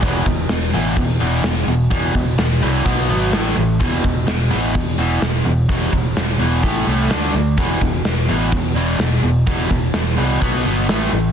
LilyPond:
<<
  \new Staff \with { instrumentName = "Overdriven electric guitar" } { \clef bass \time 4/4 \key b \phrygian \tempo 4 = 127 <e, b, e>8 <e, b,>8 <e, b,>8 <e, b, e>8 <e, b,>8 <e, b, e>8 <e, b,>8 <e, b,>8 | <e, b, e>8 <e, b,>8 <e, b,>8 <e, b, e>8 <b, fis b>8 <b, fis b>8 <a, e a>8 <a, e>8 | <e, b, e>8 <e, b,>8 <e, b,>8 <e, b, e>8 <e, b,>8 <e, b, e>8 <e, b,>8 <e, b,>8 | <e, b, e>8 <e, b,>8 <e, b,>8 <e, b, e>8 <a, e a>8 <a, e a>8 <d a d'>8 <d a>8 |
<e, b, e>8 <e, b,>8 <e, b,>8 <e, b, e>8 <e, b,>8 <e, b, e>8 <e, b,>8 <e, b,>8 | <e, b, e>8 <e, b,>8 <e, b,>8 <e, b, e>8 <b, fis b>8 <b, fis b>8 <a, e a>8 <a, e>8 | }
  \new Staff \with { instrumentName = "Fingered electric bass" } { \clef bass \time 4/4 \key b \phrygian e,,8 e,,8 e,,8 a,,8 e,8 e,,8 e,,8 e,,8 | e,,8 e,,8 e,,8 c,8 b,,8 gis,,8 a,,8 a,,8 | e,,8 e,,8 e,,8 a,,8 e,8 e,,8 e,,8 e,,8 | e,,8 e,,8 e,,8 e,,8 a,,8 c,8 d,8 d,8 |
e,,8 e,,8 e,,8 a,,8 e,8 e,,8 e,,8 e,,8 | e,,8 e,,8 e,,8 c,8 b,,8 g,,8 a,,8 a,,8 | }
  \new DrumStaff \with { instrumentName = "Drums" } \drummode { \time 4/4 <hho bd>8 bd8 <hho sn>4 <hho bd>4 <hho sn>4 | <hho bd>8 bd8 <hho sn>4 <hho bd>4 <hho sn>4 | <hho bd>8 bd8 <hho sn>4 <hho bd>4 <hho sn>4 | <hho bd>8 bd8 <hho sn>4 <hho bd>4 <hho sn>4 |
<hho bd>8 bd8 <hho sn>4 <hho bd>4 <hho sn>4 | <hho bd>8 bd8 <hho sn>4 <hho bd>4 <hho sn>4 | }
>>